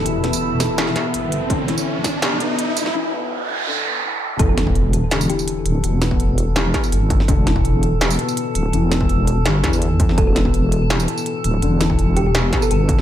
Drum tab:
HH |x-x---x-x-x-x-x-|x-x---x-x-x-x-x-|----------------|x-x-x-x-x-x-x-x-|
TB |---x--x---------|---x--x-------x-|----------------|---------x-x----|
SD |--o---o-ooo-----|--o---o-o------o|----------------|--o-----o-------|
BD |----------------|o-----o---------|----------------|o--o------------|

HH |x-x-x-x-x-x-x-x-|x-x-x-x-x-x-x-x-|x-x-x-x-x-x-x-x-|x-x-x-x-x-x-x-x-|
TB |--x--------x----|---------x-x----|--x--------x----|---------x-x----|
SD |--o-----o-o----o|--o-----o-------|--o-----o-o----o|--o-----o-------|
BD |---o------o---o-|o--o------------|---o------o---o-|o--o------------|

HH |x-x-x-x-x-x-x-x-|
TB |--x--------x----|
SD |--o-----o-o----o|
BD |---o------o---o-|